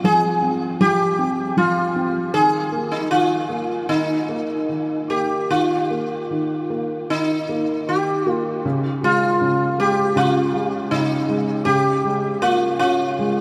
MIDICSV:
0, 0, Header, 1, 3, 480
1, 0, Start_track
1, 0, Tempo, 767263
1, 1463, Time_signature, 4, 2, 24, 8
1, 1946, Tempo, 794702
1, 4826, Tempo, 760456
1, 8316, End_track
2, 0, Start_track
2, 0, Title_t, "Sitar"
2, 0, Program_c, 0, 104
2, 29, Note_on_c, 0, 68, 100
2, 502, Note_off_c, 0, 68, 0
2, 505, Note_on_c, 0, 67, 95
2, 959, Note_off_c, 0, 67, 0
2, 985, Note_on_c, 0, 65, 71
2, 1460, Note_off_c, 0, 65, 0
2, 1463, Note_on_c, 0, 68, 100
2, 1824, Note_on_c, 0, 63, 69
2, 1836, Note_off_c, 0, 68, 0
2, 1942, Note_off_c, 0, 63, 0
2, 1944, Note_on_c, 0, 65, 87
2, 2414, Note_off_c, 0, 65, 0
2, 2417, Note_on_c, 0, 63, 82
2, 3147, Note_on_c, 0, 67, 75
2, 3167, Note_off_c, 0, 63, 0
2, 3392, Note_on_c, 0, 65, 77
2, 3399, Note_off_c, 0, 67, 0
2, 4355, Note_off_c, 0, 65, 0
2, 4357, Note_on_c, 0, 63, 82
2, 4831, Note_on_c, 0, 67, 69
2, 4842, Note_off_c, 0, 63, 0
2, 5090, Note_off_c, 0, 67, 0
2, 5090, Note_on_c, 0, 65, 69
2, 5169, Note_off_c, 0, 65, 0
2, 5560, Note_on_c, 0, 65, 78
2, 6034, Note_off_c, 0, 65, 0
2, 6037, Note_on_c, 0, 67, 84
2, 6272, Note_on_c, 0, 65, 89
2, 6280, Note_off_c, 0, 67, 0
2, 6737, Note_off_c, 0, 65, 0
2, 6740, Note_on_c, 0, 63, 76
2, 7191, Note_off_c, 0, 63, 0
2, 7207, Note_on_c, 0, 67, 96
2, 7667, Note_off_c, 0, 67, 0
2, 7692, Note_on_c, 0, 65, 94
2, 7919, Note_off_c, 0, 65, 0
2, 7928, Note_on_c, 0, 65, 94
2, 8316, Note_off_c, 0, 65, 0
2, 8316, End_track
3, 0, Start_track
3, 0, Title_t, "Felt piano"
3, 0, Program_c, 1, 0
3, 0, Control_c, 1, 64, 127
3, 0, Note_on_c, 1, 53, 68
3, 0, Note_on_c, 1, 60, 50
3, 26, Note_off_c, 1, 53, 0
3, 26, Note_on_c, 1, 53, 53
3, 255, Note_off_c, 1, 60, 0
3, 264, Note_on_c, 1, 60, 50
3, 494, Note_off_c, 1, 53, 0
3, 503, Note_on_c, 1, 53, 61
3, 732, Note_off_c, 1, 60, 0
3, 742, Note_on_c, 1, 60, 54
3, 971, Note_off_c, 1, 53, 0
3, 981, Note_on_c, 1, 53, 46
3, 1215, Note_off_c, 1, 60, 0
3, 1224, Note_on_c, 1, 60, 53
3, 1447, Note_off_c, 1, 53, 0
3, 1456, Note_off_c, 1, 60, 0
3, 1462, Note_on_c, 1, 51, 65
3, 1469, Control_c, 1, 64, 0
3, 1580, Control_c, 1, 64, 127
3, 1703, Note_on_c, 1, 58, 48
3, 1937, Note_off_c, 1, 51, 0
3, 1947, Note_on_c, 1, 51, 49
3, 2168, Note_off_c, 1, 58, 0
3, 2177, Note_on_c, 1, 58, 47
3, 2406, Note_off_c, 1, 51, 0
3, 2410, Note_off_c, 1, 58, 0
3, 2416, Note_on_c, 1, 51, 69
3, 2428, Control_c, 1, 64, 0
3, 2548, Control_c, 1, 64, 127
3, 2658, Note_on_c, 1, 58, 48
3, 2892, Note_off_c, 1, 51, 0
3, 2902, Note_on_c, 1, 51, 46
3, 3139, Note_off_c, 1, 58, 0
3, 3148, Note_on_c, 1, 58, 45
3, 3376, Note_off_c, 1, 51, 0
3, 3384, Note_off_c, 1, 58, 0
3, 3391, Note_on_c, 1, 51, 62
3, 3401, Control_c, 1, 64, 0
3, 3516, Control_c, 1, 64, 127
3, 3636, Note_on_c, 1, 58, 48
3, 3866, Note_off_c, 1, 51, 0
3, 3875, Note_on_c, 1, 51, 51
3, 4105, Note_off_c, 1, 58, 0
3, 4114, Note_on_c, 1, 58, 46
3, 4348, Note_off_c, 1, 51, 0
3, 4357, Note_on_c, 1, 51, 55
3, 4583, Note_off_c, 1, 58, 0
3, 4592, Note_on_c, 1, 58, 55
3, 4820, Note_off_c, 1, 51, 0
3, 4829, Note_on_c, 1, 51, 46
3, 5061, Note_off_c, 1, 58, 0
3, 5071, Note_on_c, 1, 58, 52
3, 5300, Note_off_c, 1, 51, 0
3, 5306, Note_off_c, 1, 58, 0
3, 5315, Note_on_c, 1, 49, 69
3, 5319, Control_c, 1, 64, 0
3, 5416, Control_c, 1, 64, 127
3, 5553, Note_on_c, 1, 56, 51
3, 5784, Note_off_c, 1, 49, 0
3, 5793, Note_on_c, 1, 49, 55
3, 6019, Note_off_c, 1, 56, 0
3, 6028, Note_on_c, 1, 56, 52
3, 6256, Note_off_c, 1, 49, 0
3, 6265, Note_on_c, 1, 49, 58
3, 6497, Note_off_c, 1, 56, 0
3, 6506, Note_on_c, 1, 56, 54
3, 6733, Note_off_c, 1, 49, 0
3, 6743, Note_on_c, 1, 49, 53
3, 6967, Note_off_c, 1, 56, 0
3, 6977, Note_on_c, 1, 56, 57
3, 7203, Note_off_c, 1, 49, 0
3, 7209, Note_off_c, 1, 56, 0
3, 7213, Note_on_c, 1, 49, 67
3, 7226, Control_c, 1, 64, 0
3, 7355, Control_c, 1, 64, 127
3, 7455, Note_on_c, 1, 56, 46
3, 7693, Note_on_c, 1, 58, 52
3, 7933, Note_on_c, 1, 61, 57
3, 8168, Note_off_c, 1, 56, 0
3, 8178, Note_on_c, 1, 56, 63
3, 8316, Note_off_c, 1, 49, 0
3, 8316, Note_off_c, 1, 56, 0
3, 8316, Note_off_c, 1, 58, 0
3, 8316, Note_off_c, 1, 61, 0
3, 8316, End_track
0, 0, End_of_file